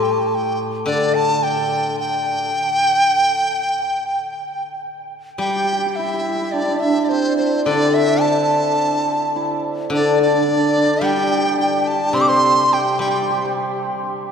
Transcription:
Already playing: guzheng A2 G3
0.03 dizi G5
0.12 dizi A5
0.20 dizi G5
0.27 dizi A5
0.35 dizi G5
0.86 guzheng D3, dizi D5
1.15 dizi A5
1.43 dizi G5
1.99 dizi G5
5.38 guzheng G3, hammered dulcimer G4, dizi G5
5.49 hammered dulcimer G4
5.56 hammered dulcimer G4
5.64 hammered dulcimer G4
5.73 hammered dulcimer G4
5.79 hammered dulcimer G4
5.86 hammered dulcimer G4
5.91 dizi G5
5.96 hammered dulcimer E4, dizi E5
6.05 hammered dulcimer E4
6.13 hammered dulcimer E4
6.21 hammered dulcimer E4
6.28 hammered dulcimer E4
6.35 hammered dulcimer E4
6.42 hammered dulcimer E4
6.52 hammered dulcimer D4, dizi D5
6.61 hammered dulcimer D4
6.68 hammered dulcimer D4
6.76 hammered dulcimer D4
6.80 hammered dulcimer D4, dizi E5
6.90 hammered dulcimer D4
6.97 hammered dulcimer D4
7.05 dizi D5
7.09 hammered dulcimer C4, dizi C5
7.37 hammered dulcimer C4, dizi C5
7.65 guzheng D3, hammered dulcimer D4, dizi D5
7.94 dizi E5
8.21 hammered dulcimer A4, dizi A5
9.36 hammered dulcimer E4
9.90 guzheng D3, hammered dulcimer D4
9.94 dizi D5
10.19 hammered dulcimer D4, dizi D5
10.27 hammered dulcimer D4
10.34 hammered dulcimer D4
10.42 hammered dulcimer D4
10.48 hammered dulcimer D4
10.56 hammered dulcimer D4
10.61 hammered dulcimer D4
10.69 hammered dulcimer D4
10.77 hammered dulcimer D4
10.85 hammered dulcimer D4
11.01 guzheng G3, hammered dulcimer G4, dizi G5
11.10 hammered dulcimer G4
11.18 hammered dulcimer G4
11.24 hammered dulcimer G4
11.31 hammered dulcimer G4
11.39 hammered dulcimer G4
11.46 hammered dulcimer G4
11.57 hammered dulcimer G4, dizi G5
11.88 dizi A5
12.13 guzheng C3, hammered dulcimer C5, dizi C6
12.21 dizi D6
12.28 hammered dulcimer C5, dizi C6
12.72 hammered dulcimer G4, dizi G5
12.99 guzheng G3, hammered dulcimer G4, dizi G5
13.07 hammered dulcimer G4
13.14 hammered dulcimer G4
13.22 hammered dulcimer G4
13.30 hammered dulcimer G4
13.38 hammered dulcimer G4
13.45 hammered dulcimer G4

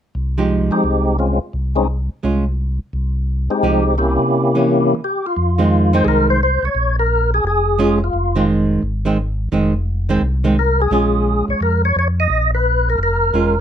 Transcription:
0.15 tonewheel organ C2
0.38 hollow-body jazz guitar F3 G#3 D#4 G4
0.71 tonewheel organ G#3 C4 D#4 G4
0.84 tonewheel organ C2
1.18 tonewheel organ G#3 C4 C#4 F4
1.53 tonewheel organ C2
1.75 tonewheel organ G#3 C4 C#4 D#4
2.23 tonewheel organ C2, hollow-body jazz guitar G#3 C#4 F4
2.93 tonewheel organ C2
3.50 tonewheel organ G#3 C4 D#4 G4
3.63 tonewheel organ C2, hollow-body jazz guitar F3 G#3 D#4 G4
3.98 tonewheel organ C3 A#3 C#4 E4 G4
4.55 hollow-body jazz guitar E3 A#3 C#4
5.04 tonewheel organ G4
5.26 tonewheel organ F4
5.37 tonewheel organ F2
5.58 hollow-body jazz guitar D#3 G#3 C4
5.93 hollow-body jazz guitar D#3 G#3 C4, tonewheel organ C5
6.05 tonewheel organ C2 G#4 A#4
6.30 tonewheel organ C5
6.43 tonewheel organ C5
6.63 tonewheel organ C2 C#5
6.75 tonewheel organ A#1
6.99 tonewheel organ A#4
7.34 tonewheel organ G#4
7.44 tonewheel organ F1 G#4
7.79 hollow-body jazz guitar G#3 C#4 F4
8.04 tonewheel organ F4
8.13 tonewheel organ F1
8.36 hollow-body jazz guitar D#3 G#3 C4
8.83 tonewheel organ G#1
9.05 hollow-body jazz guitar D#3 G#3 C4
9.52 tonewheel organ F1, hollow-body jazz guitar D#3 G#3 C4
10.09 hollow-body jazz guitar D#3 G#3 C4
10.21 tonewheel organ C2
10.44 hollow-body jazz guitar D#3 G#3 C4
10.59 tonewheel organ A#4
10.82 tonewheel organ G#4
10.91 tonewheel organ A#1, hollow-body jazz guitar G#3 C#4 F4
11.48 tonewheel organ A#1 C#5
11.60 tonewheel organ F2 A#4
11.85 tonewheel organ C#5
11.96 tonewheel organ F2 C#5
12.20 tonewheel organ D#5
12.30 tonewheel organ A#1
12.55 tonewheel organ B4
12.90 tonewheel organ A#4
12.98 tonewheel organ F1
13.03 tonewheel organ A#4
13.33 tonewheel organ E1, hollow-body jazz guitar G#3 C#4 F4

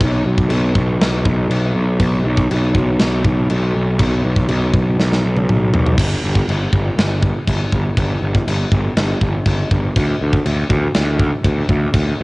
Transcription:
0.01 picked electric bass B1, kick, china
0.26 picked electric bass B1
0.38 kick
0.49 picked electric bass B1, china
0.75 picked electric bass B1, kick
1.00 picked electric bass B1, snare, china
1.25 picked electric bass B1, kick
1.49 picked electric bass B1, china
1.75 picked electric bass B1
2.00 picked electric bass B1, kick, china
2.24 picked electric bass B1
2.37 kick
2.51 picked electric bass B1, china
2.75 picked electric bass B1, kick
2.99 picked electric bass B1, snare, china
3.24 picked electric bass B1, kick
3.49 picked electric bass B1, china
3.75 picked electric bass B1
3.99 picked electric bass B1, kick, china
4.25 picked electric bass B1
4.36 kick
4.49 picked electric bass B1, china
4.73 picked electric bass B1, kick
4.99 picked electric bass B1, snare
5.12 snare
5.25 picked electric bass B1
5.37 high tom
5.49 picked electric bass B1, mid tom
5.74 picked electric bass B1, floor tom
5.87 floor tom
5.98 picked electric bass G1, kick, crash, china
6.24 picked electric bass G1
6.35 kick
6.48 picked electric bass G1, china
6.73 picked electric bass G1, kick
6.98 picked electric bass G1, snare, china
7.23 kick
7.48 picked electric bass G1, kick, china
7.73 picked electric bass G1, kick
7.97 picked electric bass G1, kick, china
8.22 picked electric bass G1
8.35 kick
8.47 picked electric bass G1, china
8.72 picked electric bass G1, kick
8.97 picked electric bass G1, snare, china
9.21 picked electric bass G1, kick
9.46 picked electric bass G1, kick, china
9.71 picked electric bass G1, kick
9.96 picked electric bass D2, kick, china
10.21 picked electric bass D2
10.33 kick
10.46 picked electric bass D2, china
10.69 picked electric bass D2, kick
10.95 picked electric bass D2, snare, china
11.20 kick
11.44 picked electric bass D2, kick, china
11.69 picked electric bass D2, kick
11.94 picked electric bass D2, kick, china

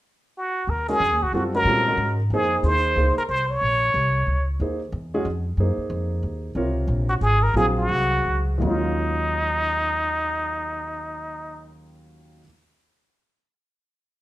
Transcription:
0.37 muted trumpet F#4
0.67 upright bass D#2, muted trumpet A#4
0.89 grand piano G#3 C#4 F#4 A#4, muted trumpet G#4
1.00 upright bass F2
1.12 upright bass D#2
1.22 upright bass C#2, muted trumpet F#4
1.33 upright bass F#2, grand piano G3 C4 F4 A4, muted trumpet F#4
1.55 grand piano G#3 C#4 F#4 A#4, muted trumpet A#4
1.65 upright bass A#2, grand piano G3 C4 F4 A4
1.88 grand piano G#3 C#4 F#4 A#4
1.97 upright bass G#2
2.30 upright bass F2, grand piano A#3 D#4 G#4 C5, muted trumpet G#4
2.63 upright bass D#2, grand piano A#3 D#4 G#4 C5, muted trumpet C5
2.96 upright bass C#2, grand piano A#3 D#4 G#4 C5
3.17 muted trumpet A#4, muted upright bass stroke
3.29 upright bass C2, muted trumpet C5
3.50 muted trumpet C#5
3.61 upright bass A#1
3.94 upright bass C2
4.27 upright bass C#2
4.60 upright bass D#2, grand piano A#3 D#4 G#4 C5
4.92 upright bass E2
5.14 grand piano G#3 C#4 F#4 G#4
5.25 upright bass F2
5.57 upright bass F#2, grand piano A#3 D#4 G#4 C5
5.78 muted upright bass stroke
5.90 upright bass F2
6.23 upright bass D#2
6.55 upright bass C#2, grand piano C3 F4 A#4 C#5
6.88 upright bass A#1
7.09 muted trumpet F#4
7.21 upright bass G#1, muted trumpet G#4
7.43 muted trumpet A#4
7.54 upright bass A#1, grand piano F#3 C4 G#4 F5, muted trumpet G#4
7.78 muted trumpet F#4
7.89 upright bass C2
8.25 upright bass C#2
8.58 grand piano D#2 D#3, upright bass D#2
8.63 grand piano F#3 G#3, muted trumpet D#4
8.67 grand piano C#4 F4

